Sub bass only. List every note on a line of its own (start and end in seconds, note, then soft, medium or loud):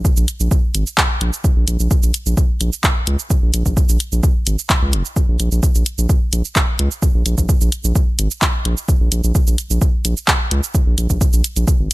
0.17 0.26 A#1 medium
0.40 0.49 A#1 medium
0.74 0.84 G#1 medium
1.21 1.31 A#1 loud
1.56 1.65 A#1 loud
1.68 1.77 A#1 medium
1.80 1.89 A#1 medium
2.03 2.12 A#1 medium
2.26 2.35 A#1 medium
2.61 2.70 A#1 loud
3.07 3.17 C#2 medium
3.42 3.51 A#1 medium
3.54 3.63 A#1 medium
3.66 3.75 A#1 loud
3.89 3.98 A#1 medium
4.12 4.21 A#1 medium
4.47 4.56 G#1 medium
4.82 4.95 C#2 loud
4.93 5.03 F1 medium
5.28 5.37 A#1 loud
5.40 5.49 A#1 loud
5.52 5.61 A#1 loud
5.75 5.84 A#1 medium
5.98 6.07 A#1 medium
6.33 6.42 A#1 loud
6.79 6.89 C#2 loud
7.15 7.23 A#1 medium
7.26 7.35 A#1 medium
7.38 7.47 A#1 loud
7.61 7.70 A#1 medium
7.84 7.93 A#1 medium
8.19 8.28 G#1 medium
8.65 8.75 A#1 loud
9.01 9.09 A#1 loud
9.12 9.21 A#1 medium
9.24 9.33 A#1 loud
9.47 9.56 A#1 medium
9.70 9.79 A#1 medium
10.05 10.14 A#1 loud
10.51 10.61 C#2 medium
10.87 10.96 A#1 loud
10.98 11.07 A#1 medium
11.10 11.19 A#1 loud
11.33 11.42 A#1 medium
11.56 11.65 A#1 medium
11.80 11.89 G#1 medium